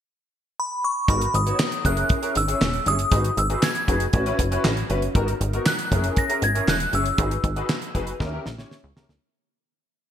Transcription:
0.60 B5
0.84 C#6
1.08 G#1 B3 D#4 F#4 A#4 B5, kick, closed hi-hat
1.21 closed hi-hat
1.34 G#1 D#6, closed hi-hat
1.46 B3 D#4 F#4 C#5, closed hi-hat
1.59 snare, clap
1.72 closed hi-hat
1.84 F#1 C#4 E4 G#4 A#4 F#6, kick, closed hi-hat
1.97 closed hi-hat
2.09 kick, closed hi-hat
2.22 C#4 E4 G#4 A#4, closed hi-hat
2.35 G#1 E6, closed hi-hat
2.48 C#4 E4 G#4 C#5, closed hi-hat
2.61 E1, snare, clap
2.73 closed hi-hat
2.86 G1 C#4 E4 G#4 C#5 D#6, closed hi-hat
2.99 closed hi-hat
3.11 G#1 D#4 F#4 G#4 B4, kick, closed hi-hat
3.24 closed hi-hat
3.37 G#1 E6, closed hi-hat
3.49 D#4 F#4 G#4 B4, closed hi-hat
3.63 G#6, snare, clap
3.75 closed hi-hat
3.87 F#1 D#4 F#4 G#4 B4, kick, closed hi-hat
4.00 closed hi-hat
4.13 A1 C#4 E4 F#4 B4, kick, closed hi-hat
4.26 C#4 E4 F#4 B4, closed hi-hat
4.39 F#1, kick, closed hi-hat
4.51 C#4 E4 F#4 B4, closed hi-hat
4.64 A1, snare, clap
4.77 closed hi-hat
4.89 G1 C#4 E4 F#4 B4, closed hi-hat
5.02 closed hi-hat
5.15 G#1 B3 D#4 F#4 A#4, kick, closed hi-hat
5.28 closed hi-hat
5.40 G#1, closed hi-hat
5.53 B3 D#4 F#4 A#4, closed hi-hat
5.66 F#6, snare, clap
5.79 closed hi-hat
5.91 F#1 C#4 E4 G#4 A#4, kick, closed hi-hat
6.04 closed hi-hat
6.17 A#6, kick, closed hi-hat
6.29 C#4 E4 G#4 A#4, closed hi-hat
6.42 G#1 G#6, closed hi-hat
6.54 C#4 E4 G#4 A#4, closed hi-hat
6.68 E1 F#6, snare, clap
6.80 closed hi-hat
6.92 G1 C#4 E4 G#4 C#5 E6, closed hi-hat
7.06 closed hi-hat
7.18 G#1 D#4 F#4 G#4 B4, kick, closed hi-hat
7.31 closed hi-hat
7.44 G#1, kick, closed hi-hat
7.56 D#4 F#4 G#4 B4, closed hi-hat
7.69 snare, clap
7.82 closed hi-hat
7.94 F#1 D#4 F#4 G#4 B4, kick, closed hi-hat
8.07 closed hi-hat
8.19 D#2 C#4 E4 G4 A#4, kick, snare
8.32 C#4 E4 G4 A#4
8.46 A#1, snare
8.58 C#4 E4 G4 C#5, snare
8.71 snare
8.84 C#2
8.96 C#2 C#4 E4 G4 A#4, snare
9.09 D2, snare

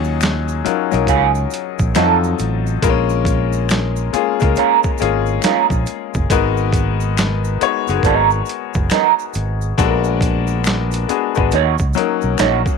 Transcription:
Already playing: D#2 F#3 C#4 D#4 F4 G#4
0.04 shaker
0.21 finger snap, snare, closed hi-hat, shaker
0.48 shaker
0.65 F#3 C#4 D#4 F4 A#4, muted fretless electric bass stroke, closed hi-hat, shaker
0.91 B1 F#3 C#4 D#4 F4 A#4, closed hi-hat, shaker
1.07 C#2 F#3 C#4 F4 G#4, kick, closed hi-hat, shaker
1.35 shaker
1.51 closed hi-hat, shaker
1.79 A#1, kick, shaker
1.95 F2 F#3 C4 D#4 F4 F#4 A4, finger snap, snare, closed hi-hat, shaker
2.04 A4
2.24 shaker
2.39 A1, closed hi-hat, shaker
2.67 shaker
2.82 A#1 G#3 A#3 B3 F4 A#4, kick, closed hi-hat, shaker
2.89 C#4
3.09 shaker
3.25 kick, closed hi-hat, shaker
3.53 shaker
3.69 finger snap, snare, closed hi-hat, shaker
3.96 shaker
4.13 G#3 A#3 C#4 F4 G#4, muted fretless electric bass stroke, closed hi-hat, shaker
4.40 C#2 G#3 A#3 C#4 F4 A#4, kick, closed hi-hat, shaker
4.56 G#3 C#4 F4 A#4, closed hi-hat, shaker
4.83 kick, shaker
4.98 G#1 G#3 A#3 C#4 F4 G#4, closed hi-hat, shaker
5.26 shaker
5.42 G#3 C#4 F4 A#4, finger snap, snare, closed hi-hat, shaker
5.70 A#1, kick, shaker
5.86 closed hi-hat, shaker
6.14 F#1, kick, shaker
6.30 G#1 G#3 B3 D#4 F#4 A#4, kick, closed hi-hat, shaker
6.57 shaker
6.73 kick, closed hi-hat, shaker
7.01 shaker
7.17 finger snap, snare, closed hi-hat, shaker
7.44 shaker
7.61 G#3 B3 D#4 F#4 C#5, closed hi-hat, shaker
7.87 F#1 G#3 B3 D#4 F#4 G#4, closed hi-hat, shaker
7.96 A#4
8.03 G#1 F3 B3 D#4 A#4, kick, closed hi-hat, shaker
8.15 F#3
8.30 shaker
8.46 closed hi-hat, shaker
8.74 F#1, kick, shaker
8.90 F#3 B3 D#4 A#4, finger snap, snare, closed hi-hat, shaker
9.19 shaker
9.34 G#1, closed hi-hat, shaker
9.61 shaker
9.78 A#1 G#3 B3 D4 F#4 A4, kick, closed hi-hat, shaker
9.86 A#4
10.04 shaker
10.21 kick, closed hi-hat, shaker
10.47 shaker
10.64 finger snap, snare, closed hi-hat, shaker
10.91 closed hi-hat, shaker
11.09 G#3 B3 D4 F#4 G#4, closed hi-hat, shaker
11.35 G#1 G#3 B3 D4 F#4 B4, kick, shaker
11.51 D#2 A#3 D#4 F#4, closed hi-hat, shaker
11.55 C#5
11.78 C#2, kick, shaker
11.93 F#3 A#3 C#4 D#4 A#4, shaker
11.98 closed hi-hat
12.21 B1, shaker
12.38 A#1 A#3 D#4 F#4 C#5, finger snap, snare, closed hi-hat, shaker
12.66 kick, shaker

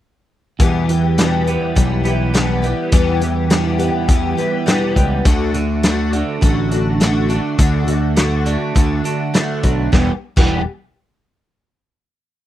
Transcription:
0.60 E2 B2 E3 G3 B3 G4, kick, closed hi-hat
0.89 E3 G3 B3 G4, closed hi-hat
1.18 E2 B2 E3 G3 B3 G4, snare, closed hi-hat
1.47 E3 G3 B3 G4, closed hi-hat
1.75 B1 E3 G3 B3 G4, kick, closed hi-hat
2.04 E3 G3 B3 G4, closed hi-hat
2.34 E2 B2 E3 G3 B3 G4, snare, closed hi-hat
2.62 E3 G3 B3 G4, closed hi-hat
2.92 E2 B2 E3 G3 B3 G4, kick, closed hi-hat
3.21 E3 G3 B3 G4, closed hi-hat
3.50 E2 B2 E3 G3 B3 G4, snare, closed hi-hat
3.79 E3 G3 B3 G4, closed hi-hat
4.08 E2 E3 G3 B3 G4, kick, closed hi-hat
4.37 E3 G3 B3 G4, closed hi-hat
4.66 E2 B2 E3 G3 B3 G4, snare, closed hi-hat
4.96 C#2 E3 G3 B3 G4, kick, closed hi-hat
5.25 D2 D3 A3 D4 F#4, kick, closed hi-hat
5.54 D3 A3 D4 F#4, closed hi-hat
5.83 D3 A3 D4 F#4, snare, closed hi-hat
6.13 A3 D4 F#4, closed hi-hat
6.41 A1 D3 A3 D4 F#4, kick, closed hi-hat
6.71 A3 D4 F#4, closed hi-hat
7.00 D3 A3 D4 F#4, snare, closed hi-hat
7.29 A3 D4 F#4, closed hi-hat
7.58 D2 D3 A3 D4 F#4, kick, closed hi-hat
7.87 D3 A3 D4 F#4, closed hi-hat
8.16 D3 A3 D4 F#4, snare, closed hi-hat
8.45 A3 D4 F#4, closed hi-hat
8.75 D2 D3 A3 D4 F#4, kick, closed hi-hat
9.04 A3 D4 F#4, closed hi-hat
9.34 D3 A3 D4 F#4, snare, closed hi-hat
9.63 B1 A3 D4 F#4, kick, closed hi-hat
9.92 E1 E2 B2 E3 G3 B3 G4, kick, snare
10.36 E1 E2 B2 E3 G3 B3 G4, kick, crash

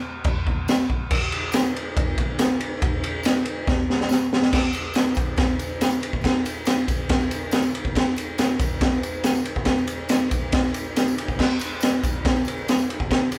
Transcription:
0.24 kick, crash
0.47 kick
0.68 snare, tambourine, crash
0.90 kick
1.11 kick, crash
1.32 ride
1.52 snare, ride, tambourine
1.76 ride
1.97 kick, ride
2.18 kick, ride
2.39 snare, ride, tambourine
2.60 ride
2.82 kick, ride
3.04 ride
3.23 snare, ride, tambourine
3.45 ride
3.67 kick, snare
3.90 snare
4.01 snare
4.09 snare, tambourine
4.33 snare
4.42 snare
4.52 kick, snare, crash, tambourine
4.73 ride, tambourine
4.94 snare, ride, tambourine
5.15 kick, ride, tambourine
5.36 kick, snare, ride, tambourine
5.48 tambourine
5.59 ride, tambourine
5.69 tambourine
5.81 snare, ride, tambourine
5.90 tambourine
6.00 ride, tambourine
6.13 kick
6.21 kick, ride, tambourine
6.26 snare
6.45 ride, tambourine
6.65 snare, ride, tambourine
6.79 tambourine
6.88 kick, ride, tambourine
6.98 tambourine
7.09 kick, snare, ride, tambourine
7.20 tambourine
7.31 ride, tambourine
7.51 snare, ride, tambourine
7.62 tambourine
7.75 ride
7.85 kick
7.95 kick, snare, ride, tambourine
8.16 ride, tambourine
8.38 snare, ride, tambourine
8.51 tambourine
8.59 kick, ride, tambourine
8.81 kick, snare, ride, tambourine
8.93 tambourine
9.03 ride, tambourine
9.15 tambourine
9.24 snare, ride, tambourine
9.35 tambourine
9.45 ride
9.56 kick
9.65 kick, snare, ride, tambourine
9.78 tambourine
9.87 ride, tambourine
10.09 snare, ride, tambourine
10.31 kick, ride, tambourine
10.52 kick, snare, ride, tambourine
10.64 tambourine
10.74 ride, tambourine
10.87 tambourine
10.96 snare, ride, tambourine
11.08 tambourine
11.18 ride, tambourine
11.28 kick, tambourine
11.39 kick, snare, tambourine, crash
11.59 ride, tambourine
11.81 snare, ride, tambourine
12.04 kick, ride, tambourine
12.12 tambourine
12.25 kick, snare, ride, tambourine
12.36 tambourine
12.45 ride, tambourine
12.57 tambourine
12.68 snare, ride, tambourine
12.78 tambourine
12.90 ride
13.00 kick
13.11 kick, snare, ride, tambourine
13.32 ride, tambourine

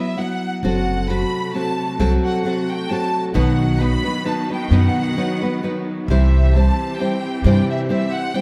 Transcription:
Already playing: F#3 B3 E4 B4 E5
0.18 F#3 B3 E4 B4 F#5
0.63 F#1 C3 F#3 A3 C4 F#4 A4 F#5
1.09 F#3 C4 F#4 A4 B5
1.54 F#3 C4 F#4 A4 A5
1.99 C2 F#3 C4 F#4 A4 A5
2.24 F#5
2.44 F#3 C4 F#4 A4 F#5
2.69 G5
2.90 F#3 C4 F#4 A4 A5
3.34 B1 B2 D#3 F#3 B3 D#4 B4 F#5
3.79 F#3 B3 D#4 B4 B5
4.04 F#3 B3 D#4 B4
4.25 F#3 B3 D#4 B4 A5
4.50 F#3 B3 D#4 B4 G5
4.71 F#2 B2 D#3 F#3 B3 D#4 B4 F#5
5.17 F#3 B3 D#4 B4
5.42 F#3 B3 D#4 B4
5.63 F#3 B3 D#4 B4
6.08 C2 C3 E3 G3 C4 E4 G4 C5 E5
6.53 G3 C4 E4 C5 A5
6.99 G3 C4 E4 C5 G5
7.44 G2 C3 E3 G3 C4 E4 C5 G5
7.71 E5
7.89 G3 C4 E4 C5 E5
8.13 F#5
8.34 G3 C4 E4 C5 G5

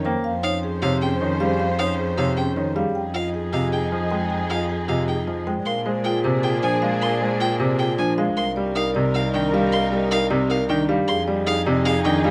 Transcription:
Already playing: F2 D#3 C#5
0.05 A#3 C5 G5
0.24 F2 C#4 C5 F5
0.43 D#4 C#5 F5
0.63 G#4
0.82 C3 D#4 C#5 F5
1.01 C#4 G#4 G5
1.21 D#3 C#5
1.40 G3 G#4 F5
1.60 F5
1.79 D#4 C#5 F5
1.99 G#4
2.18 C3 D#4 C#5 F5
2.37 C#4 G#4 G5
2.56 D#3 C#5
2.76 G3 G#4 F5
2.95 F2 D#4 G#4 G5
3.14 F4 D#5 F5
3.34 G#4
3.53 C3 F4 D#5 F5
3.72 D#4 G#4 G5
3.92 F3 D#5
4.10 G#3 C5 G5
4.30 G5
4.50 F4 D#5 F5
4.69 G#4
4.88 C3 F4 D#5 F5
5.08 D#4 G#4 G5
5.27 F3 D#5
5.47 G#3 C5 G5
5.66 A#2 D4 G#4 A#4 F5 C6
5.86 G#3 C5
6.04 F4 G#4 G5
6.24 C3 C5
6.43 F4 G#4 G5
6.62 F3 D4 C5 G#5
6.82 G#3 F5
7.01 A#4 F5 C6
7.21 G#3 C5
7.40 F4 G#4 G5
7.60 C3 C5
7.79 F4 G#4 G5
7.98 F3 D4 C5 G#5
8.18 G#3 F5
8.37 C2 D#4 A#4 F5 C6
8.56 G3 D5
8.75 D#4 A#4 F5
8.95 C3 D5
9.14 D#4 A#4 F5
9.34 D#3 D4 D5 G5
9.53 G3 F5
9.72 A#4 F5 C6
9.92 G3 D5
10.11 D#4 A#4 F5
10.30 C3 D5
10.50 D#4 A#4 F5
10.69 D#3 D4 D5 G5
10.89 G3 F5
11.08 F2 D#4 G#4 F5 C6
11.28 G3 D5
11.47 D#4 G#4 F5
11.66 C3 D5
11.85 D#4 G#4 F5
12.04 D#3 D4 D5 G5
12.24 G3 F5

